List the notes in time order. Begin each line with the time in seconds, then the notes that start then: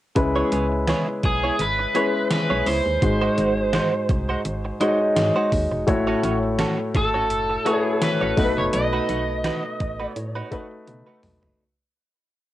0.16 C#2 C#3 G#3 C#4 E4 B4, muted clean electric guitar stroke, kick, closed hi-hat
0.36 B3 E4 G#4 C#5
0.52 C#2 B3 E4 G#4 C#5, closed hi-hat
0.72 muted clean electric guitar stroke
0.88 B3 E4 G#4 C#5, snare, closed hi-hat
1.08 muted clean electric guitar stroke
1.23 B1 G#4, muted clean electric guitar stroke, kick, closed hi-hat
1.43 B3 E4 G#4 C#5
1.59 G#1 B4, closed hi-hat
1.79 muted clean electric guitar stroke
1.94 G#3 B3 C#4 E4 G#4 B4 C#5, closed hi-hat
2.14 muted clean electric guitar stroke
2.30 B4, muted clean electric guitar stroke, snare, closed hi-hat
2.50 B1 B3 E4 G#4 C#5
2.66 C#2 B3 E4 G#4 C5 C#5, open hi-hat
2.86 D#2, muted clean electric guitar stroke
3.02 G#1 G#2 G#3 D#4 F#4 C5, muted clean electric guitar stroke, kick, closed hi-hat
3.21 G#3 D#4 F#4 C5
3.37 G#1 G#3 D#4 F#4 C5, closed hi-hat
3.57 muted clean electric guitar stroke
3.73 G#3 D#4 F#4 C5, snare, closed hi-hat
3.93 muted clean electric guitar stroke
4.09 C2, muted clean electric guitar stroke, kick, closed hi-hat
4.29 G#3 D#4 F#4 C5
4.45 G#1, muted clean electric guitar stroke, closed hi-hat
4.65 muted clean electric guitar stroke
4.80 G#3 D#4 F#4 C5 C#5, closed hi-hat
4.88 D#5
5.00 muted clean electric guitar stroke
5.16 G#2, muted clean electric guitar stroke, snare, closed hi-hat
5.36 G#3 D#4 F#4 C5
5.52 D#2, kick, open hi-hat
5.72 E1, muted clean electric guitar stroke
5.87 A1 A2 A3 E4 F#4 C#5, muted clean electric guitar stroke, kick, closed hi-hat
6.07 C#4 F#4 A4 C#5
6.23 A1 C#4 F#4 A4 C#5, closed hi-hat
6.43 muted clean electric guitar stroke
6.59 C#4 F#4 A4 C#5, snare, closed hi-hat
6.79 muted clean electric guitar stroke
6.95 G#1 A4, muted clean electric guitar stroke, kick, closed hi-hat
7.14 C#4 F#4 A4 C#5
7.30 F#1, closed hi-hat
7.50 muted clean electric guitar stroke
7.65 A3 C#4 E4 F#4 A4 B4 C#5, closed hi-hat
7.70 G#4 C#5
7.86 muted clean electric guitar stroke
8.02 B4, muted clean electric guitar stroke, snare, closed hi-hat
8.21 A1 C#4 F#4 A4 C#5
8.37 B1 B2 A3 D#4 F#4 A4 B4, kick, open hi-hat
8.44 B4
8.58 F#1 C#5, muted clean electric guitar stroke
8.73 B1 D#5, muted clean electric guitar stroke, closed hi-hat
8.93 A3 D#4 F#4 B4
9.09 B1 A3 D#4 F#4 B4, closed hi-hat
9.29 muted clean electric guitar stroke
9.44 A3 D#4 F#4 B4, snare, closed hi-hat
9.64 muted clean electric guitar stroke
9.80 A1, muted clean electric guitar stroke, kick, closed hi-hat
10.00 A3 D#4 F#4 B4
10.10 C#5
10.16 A2, muted clean electric guitar stroke, closed hi-hat
10.35 A3 D#4 F#4 B4
10.51 A3 D#4 F#4 B4, kick, closed hi-hat
10.72 muted clean electric guitar stroke
10.87 B2, muted clean electric guitar stroke, closed hi-hat, high tom
11.07 A3 D#4 F#4 B4
11.23 B1, muted clean electric guitar stroke, mid tom, open hi-hat
11.42 F#1, muted clean electric guitar stroke, floor tom